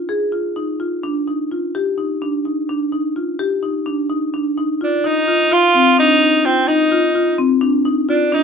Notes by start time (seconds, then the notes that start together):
0.09 G#4
0.32 F4
0.56 D#4
0.80 F4
1.03 D4
1.28 D#4
1.52 F4
1.75 G4
1.98 D#4
2.22 D4
2.45 D#4
2.69 D4
2.92 D#4
3.16 F4
3.39 G4
3.63 D#4
3.86 D4
4.10 D#4
4.34 D4
4.58 D#4
4.81 D4 F4
5.04 D#4
5.28 F4
5.51 F4
5.75 C4
5.98 D4 D#4
6.22 D#4
6.44 C4 F4
6.68 D#4
6.92 F4
7.15 F4
7.38 C4
7.61 D4
7.85 D#4
8.09 D4 F4
8.32 D4 D#4